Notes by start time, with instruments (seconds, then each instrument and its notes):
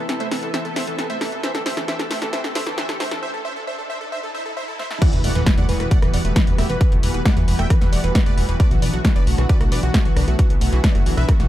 Already playing: riser
0.09 analog synth pad C3 B3 E4 A4, synth pluck E3, supersaw synth A4, snare, closed hi-hat
0.20 analog synth bass A2, synth pluck A3, supersaw synth C5 E5, closed hi-hat
0.31 analog synth pad C3 B3 E4 A4, synth pluck E3, supersaw synth A4, snare, open hi-hat
0.43 synth pluck E3, supersaw synth A4, closed hi-hat
0.54 analog synth pad C3 B3 E4 A4, synth pluck E3, supersaw synth C5 E5, snare, closed hi-hat
0.65 analog synth pad C3 B3 E4 A4, synth pluck E3, supersaw synth A4, closed hi-hat
0.76 synth pluck A3, supersaw synth C5 E5, snare, open hi-hat
0.87 analog synth bass A1, analog synth pad C3 B3 E4 A4, synth pluck E3, supersaw synth A4, closed hi-hat
0.99 synth pluck E3, supersaw synth A4, snare, closed hi-hat
1.10 analog synth bass A1, analog synth pad C3 B3 E4 A4, synth pluck A3, supersaw synth C5 E5, closed hi-hat
1.21 analog synth bass A1, synth pluck E3, supersaw synth A4, snare, open hi-hat
1.32 analog synth bass A1, analog synth pad C3 B3 E4 A4, synth pluck E3, supersaw synth A4, closed hi-hat
1.43 analog synth pad D3 A3 G4 A4, synth pluck E3, supersaw synth C5 E5, snare, closed hi-hat
1.55 synth pluck E3, supersaw synth A4, snare, closed hi-hat
1.66 analog synth bass G1, analog synth pad D3 A3 G4 A4, synth pluck A3, supersaw synth C5 E5, snare, open hi-hat
1.77 synth pluck E3, supersaw synth A4, snare, closed hi-hat
1.88 analog synth pad D3 A3 G4 A4, synth pluck E3, supersaw synth C5 E5, snare, closed hi-hat
1.99 analog synth bass G2, synth pluck E3, supersaw synth A4, snare, closed hi-hat
2.10 analog synth bass G1, analog synth pad D3 A3 G4 A4, synth pluck A3, supersaw synth C5 E5, snare, open hi-hat
2.22 analog synth bass G1, synth pluck E3, supersaw synth A4, snare, closed hi-hat
2.33 analog synth pad D3 A3 G4 A4, synth pluck E3, supersaw synth C5 E5, snare, closed hi-hat
2.44 analog synth pad D3 A3 G4 A4, synth pluck E3, supersaw synth A4, snare, closed hi-hat
2.55 analog synth bass G1, synth pluck A3, supersaw synth C5 E5, snare, open hi-hat
2.66 analog synth bass G1, analog synth pad D3 A3 G4 A4, synth pluck E3, supersaw synth A4, snare, closed hi-hat
2.78 synth pluck E3, supersaw synth C5 E5, snare, closed hi-hat
2.89 analog synth pad D3 A3 G4 A4, synth pluck E3, supersaw synth A4, snare, closed hi-hat
3.00 analog synth bass G1, synth pluck A3, supersaw synth C5 E5, snare, open hi-hat
3.11 analog synth pad D3 A3 G4 A4, synth pluck E3, supersaw synth A4, snare, closed hi-hat
3.23 supersaw synth C5 E5
3.34 supersaw synth A4
3.45 supersaw synth C5 E5
3.56 supersaw synth A4
3.67 supersaw synth C5 E5
3.78 supersaw synth A4
3.90 supersaw synth C5 E5
4.01 supersaw synth A4
4.12 supersaw synth C5 E5, swell
4.23 supersaw synth A4
4.34 supersaw synth C5 E5
4.46 supersaw synth A4
4.57 supersaw synth C5 E5
4.68 supersaw synth A4
4.79 supersaw synth C5 E5, snare
4.90 supersaw synth A4, snare
5.02 synth pluck E3, analog synth pad E3 G3 B3 F#4, supersaw synth D5 F#5, kick, closed hi-hat, crash, impact
5.13 analog synth bass E1, synth pluck E3, supersaw synth B4, closed hi-hat
5.24 analog synth bass E1, analog synth pad E3 G3 B3 F#4, synth pluck A3, supersaw synth D5 F#5, open hi-hat
5.35 analog synth bass E1, synth pluck E3, supersaw synth B4, closed hi-hat
5.46 analog synth pad E3 G3 B3 F#4, supersaw synth B4, kick, snare, closed hi-hat
5.58 analog synth bass E2, synth pluck A3, supersaw synth D5 F#5, closed hi-hat
5.69 analog synth bass E1, synth pluck E3, analog synth pad E3 G3 B3 F#4, supersaw synth B4, open hi-hat
5.80 analog synth bass E1, synth pluck E3, supersaw synth B4, cross-stick, closed hi-hat
5.91 analog synth pad E3 G3 B3 F#4, synth pluck A3, supersaw synth D5 F#5, kick, closed hi-hat
6.02 analog synth bass E1, analog synth pad E3 G3 B3 F#4, synth pluck E3, supersaw synth B4, cross-stick, closed hi-hat
6.13 analog synth bass E1, synth pluck E3, supersaw synth D5 F#5, open hi-hat
6.25 analog synth bass E1, analog synth pad E3 G3 B3 F#4, synth pluck A3, supersaw synth B4, closed hi-hat
6.36 synth pluck E3, supersaw synth B4, kick, snare, closed hi-hat
6.47 analog synth bass E1, analog synth pad E3 G3 B3 F#4, synth pluck E3, supersaw synth B4, closed hi-hat
6.58 analog synth bass E1, synth pluck A3, supersaw synth G4 E5, cross-stick, open hi-hat
6.69 analog synth bass E1, analog synth pad E3 G3 B3 F#4, synth pluck E3, supersaw synth B4, closed hi-hat
6.81 analog synth pad E3 G3 B3 F#4, synth pluck E3, kick, closed hi-hat
6.92 analog synth bass E1, synth pluck A3, closed hi-hat
7.03 analog synth bass E1, analog synth pad E3 G3 B3 F#4, synth pluck E3, supersaw synth B4, open hi-hat
7.14 analog synth bass E1, synth pluck E3, supersaw synth B4, closed hi-hat
7.25 analog synth pad E3 G3 B3 F#4, synth pluck A3, supersaw synth D5 F#5, kick, snare, closed hi-hat
7.36 analog synth bass E2, synth pluck E3, supersaw synth B4, closed hi-hat
7.48 analog synth bass E1, analog synth pad E3 G3 B3 F#4, synth pluck E3, supersaw synth B4, open hi-hat
7.59 analog synth bass E1, synth pluck A3, supersaw synth E5 G5, cross-stick, closed hi-hat
7.70 analog synth pad E3 G3 B3 F#4, synth pluck E3, supersaw synth B4, kick, cross-stick, closed hi-hat
7.81 analog synth bass E1, analog synth pad E3 G3 B3 F#4, synth pluck E3, supersaw synth B4, snare, closed hi-hat
7.92 analog synth bass E1, synth pluck A3, supersaw synth D5 F#5, open hi-hat
8.04 analog synth bass E1, analog synth pad E3 G3 B3 F#4, synth pluck E3, supersaw synth B4, closed hi-hat
8.15 synth pluck E3, kick, snare, closed hi-hat
8.26 analog synth bass E1, analog synth pad E3 G3 B3 F#4, synth pluck A3, supersaw synth B4 D5, closed hi-hat
8.37 analog synth bass E1, synth pluck E3, supersaw synth B4, open hi-hat
8.48 analog synth bass E1, analog synth pad E3 G3 B3 F#4, synth pluck E3, supersaw synth B4, closed hi-hat
8.60 analog synth pad D3 F#3 B3 F#4, synth pluck A3, supersaw synth B4 D5, kick, closed hi-hat
8.71 analog synth bass B1, synth pluck E3, supersaw synth F#4, closed hi-hat
8.82 analog synth bass B1, analog synth pad D3 F#3 B3 F#4, synth pluck E3, supersaw synth B4 D5, open hi-hat
8.93 analog synth bass B1, synth pluck A3, supersaw synth F#4, closed hi-hat
9.04 analog synth pad D3 F#3 B3 F#4, synth pluck E3, supersaw synth F#4, kick, snare, closed hi-hat
9.16 analog synth bass F#1, synth pluck E3, supersaw synth B4 D5, closed hi-hat
9.27 analog synth bass B1, analog synth pad D3 F#3 B3 F#4, synth pluck A3, supersaw synth F#4, open hi-hat
9.38 analog synth bass B1, synth pluck E3, supersaw synth F#4, cross-stick
9.49 analog synth pad D3 F#3 B3 F#4, synth pluck E3, supersaw synth B4 D5, kick, closed hi-hat
9.61 analog synth bass B1, analog synth pad D3 F#3 B3 F#4, synth pluck A3, supersaw synth F#4, cross-stick, closed hi-hat
9.72 analog synth bass B1, synth pluck E3, supersaw synth B4 D5, open hi-hat
9.83 analog synth bass B1, analog synth pad D3 F#3 B3 F#4, synth pluck E3, supersaw synth F#4, closed hi-hat
9.94 synth pluck A3, supersaw synth F#4, kick, snare, closed hi-hat
10.05 analog synth bass B1, analog synth pad D3 F#3 B3 F#4, synth pluck E3, supersaw synth F#4, closed hi-hat
10.16 analog synth bass B1, synth pluck E3, supersaw synth D4 B4, cross-stick, open hi-hat
10.28 analog synth bass B1, analog synth pad D3 F#3 B3 F#4, synth pluck A3, supersaw synth F#4, closed hi-hat
10.39 analog synth pad D3 F#3 B3 E4, synth pluck E3, supersaw synth F#4, kick, closed hi-hat
10.50 analog synth bass B1, synth pluck E3, closed hi-hat
10.61 analog synth bass B1, analog synth pad D3 F#3 B3 E4, synth pluck A3, supersaw synth F#4, open hi-hat
10.72 analog synth bass B1, synth pluck E3, supersaw synth F#4, closed hi-hat
10.84 analog synth pad D3 F#3 B3 E4, synth pluck E3, supersaw synth B4 D5, kick, snare, closed hi-hat
10.95 analog synth bass F#1, synth pluck A3, supersaw synth F#4, closed hi-hat
11.06 analog synth bass B1, analog synth pad D3 F#3 B3 E4, synth pluck E3, supersaw synth F#4, open hi-hat
11.17 analog synth bass B1, synth pluck E3, supersaw synth B4 E5, cross-stick, closed hi-hat
11.28 analog synth pad D3 F#3 B3 E4, synth pluck A3, supersaw synth F#4, kick, cross-stick, closed hi-hat
11.40 analog synth bass B1, analog synth pad D3 F#3 B3 E4, synth pluck E3, supersaw synth F#4, snare, closed hi-hat